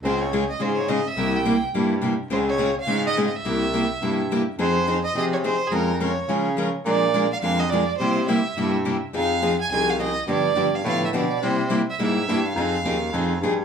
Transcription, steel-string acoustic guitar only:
X:1
M:4/4
L:1/8
Q:"Swing" 1/4=211
K:Fm
V:1 name="Steel-string acoustic guitar"
[D,A,CFA] z [D,A,CFA] z [D,A,CFA] z [D,A,CFA] z | [C,G,B,=EG] z [C,G,B,EG] z [C,G,B,EG] z [C,G,B,EG] z | [D,A,CFA] z [D,A,CFA] z [D,A,CFA] z [D,A,CFA] z | [C,G,B,=EG] z [C,G,B,EG] z [C,G,B,EG] z [C,G,B,EG] z |
[F,CEA] z [F,CEA] z [F,CEA] z [F,CEA] z | [F,A,DFB] z [F,A,DFB] z [F,A,DFB] z [F,A,DFB] z | [F,A,=DFB] z [F,A,DFB] z [F,A,DFB] z [F,A,DFB] z | [C,G,B,=EG] z [C,G,B,EG] z [C,G,B,EG] z [C,G,B,EG] z |
[F,CEA] z [F,CEA] z [F,CEA] z [F,CEA] z | [=D,F,=B,=DG] z [D,F,B,DG] z [D,F,B,DG] z [D,F,B,DG] z | [C,G,B,=EG] z [C,G,B,EG] z [C,G,B,EG] z [C,G,B,EG] z | [F,CEA] z [F,CEA] z [F,CEA] z [F,CEA] z |]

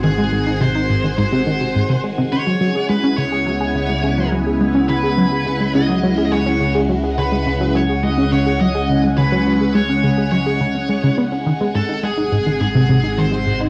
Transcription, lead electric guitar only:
X:1
M:4/4
L:1/16
Q:1/4=105
K:C#m
V:1 name="Lead electric guitar"
G4 ^B4 B6 z2 | c4 B2 c8 z2 | z2 B6 d3- d/2 d/2 c3 z | z2 B4 c2 d2 c2 d3 z |
B4 c4 c6 z2 | z2 A2 G4 G4 ^B3 z |]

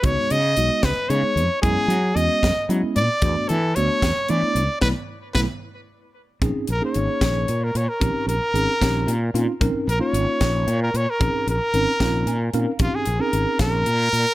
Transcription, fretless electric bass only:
X:1
M:6/8
L:1/16
Q:3/8=75
K:C#phr
V:1 name="Fretless electric bass" clef=bass
C,, z C,2 B,,, z C,, z C, z ^E,, z | F,, z F,2 E,, z F,, z F, z ^A,, z | E,, z E,2 D,, z E,, z E, z C,, z | B,,,2 z2 B,,,2 z6 |
[K:Bbdor] B,,, z B,,, z A,,, z B,,,2 B,,2 B,, z | B,,, z B,,, z A,,, z B,,,2 B,,2 B,, z | B,,, z B,,, z A,,, z B,,,2 B,,2 B,, z | B,,, z B,,, z A,,, z B,,,2 B,,2 B,, z |
B,,, z B,,, z A,,, z B,,,2 B,,2 B,, z |]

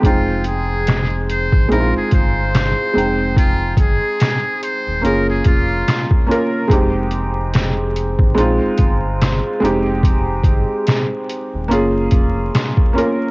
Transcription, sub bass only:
X:1
M:4/4
L:1/16
Q:"Swing 16ths" 1/4=72
K:Fm
V:1 name="Sub bass" clef=bass
F,,,6- F,,, A,,, B,,, G,,, G,,,3 z F,,,2- | F,,,2 G,,, z4 E,,, _G,,,2 F,,,2 z4 | F,,,6- F,,, A,,, B,,, G,,, G,,,3 z F,,,2- | F,,,2 G,,, z4 E,,, _G,,,2 F,,,2 z4 |]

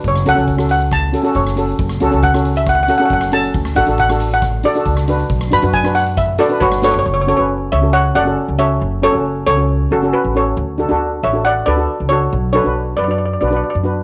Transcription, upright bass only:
X:1
M:4/4
L:1/16
Q:1/4=137
K:F#m
V:1 name="Upright bass" clef=bass
F,,,2 C,, C,,8 z F,,,4 | F,,,2 C,, C,,8 z F,,,4 | D,,2 A,,, A,,,8 z C,,4 | B,,,2 F,, F,,8 z =G,,,4 |
F,,,3 F,,,3 C,,4 F,,,2 z C,,3 | F,,,3 F,,,3 C,,4 F,,,2 z A,,,3 | D,,3 D,,3 A,,,4 D,,2 z C,,3 | B,,,3 B,,,3 F,,4 B,,,2 z F,,3 |]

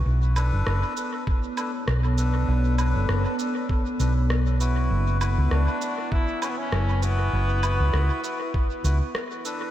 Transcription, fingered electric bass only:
X:1
M:4/4
L:1/16
Q:"Swing 16ths" 1/4=99
K:F#phr
V:1 name="Fingered electric bass" clef=bass
B,,,3 F,,, F,,, z6 z B,,,4 | B,,,3 F,,, F,,, z4 z B,,,6 | F,,,3 C,, C,, z6 z F,,,4 | F,,,3 C,, C,, z4 z C,, z4 z |]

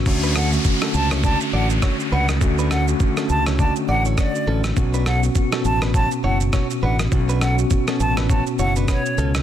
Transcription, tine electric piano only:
X:1
M:4/4
L:1/16
Q:"Swing 16ths" 1/4=102
K:D
V:1 name="Tine electric piano"
[D,A,CF]2 z [D,A,CF]2 [A,CDF]6 z4 z | [D,A,CF]2 z [D,A,CF]2 [A,CDF]6 z4 z | [B,,B,CF]2 z [B,,B,CF]2 [B,,B,CF]6 z4 z | [B,,B,CF]2 z [B,,B,CF]2 [B,,B,CF]6 z4 z |]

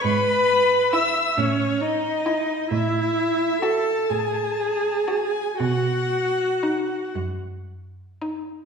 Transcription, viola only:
X:1
M:6/8
L:1/8
Q:3/8=42
K:Bmix
V:1 name="Viola"
B2 e C D2 | E2 A G3 | F3 z3 |]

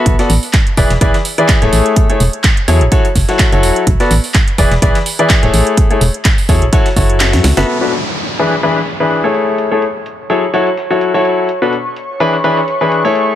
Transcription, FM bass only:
X:1
M:4/4
L:1/16
Q:"Swing 16ths" 1/4=126
K:Emix
V:1 name="FM bass" clef=bass
B,,, z A,,, z3 E,,, E,,, B,,, z4 D,,, A,,, z | z2 E,,, z3 E,, A,,, z2 F,,, z2 F,,, E,,, z | B,,, z A,,, z3 E,,, E,,, B,,, z4 D,,, A,,, z | z2 E,,, z3 E,, A,,, z2 F,,,3 F,, C,, F,,, |
z16 | z16 | z16 |]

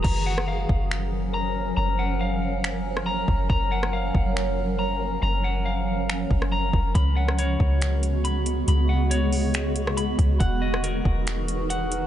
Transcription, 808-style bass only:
X:1
M:4/4
L:1/8
Q:1/4=139
K:F#
V:1 name="808-style bass" clef=bass
F,,,3 F,,,4- F,,, | F,,,6- F,,, F,,, | F,,,3 F,,,4- F,,, | F,,,4- F,,, F,,,2 E,,, |
C,,3 C,,4- C,, | C,,6- C,, C,, | =E,,,3 E,,,4- E,,, |]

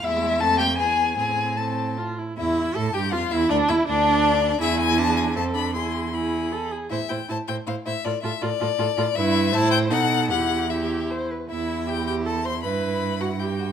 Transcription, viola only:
X:1
M:3/4
L:1/8
Q:1/4=158
K:Am
V:1 name="Viola"
^G,2 A,2 B,2 | C2 C2 F E | E2 A G F E | D E D4 |
E2 D2 C D | E2 E2 A ^G | E E E E E E | F F F F F F |
[K:Em] E2 E2 ^D2 | E2 E3 z | E2 G G A c | B3 F G2 |]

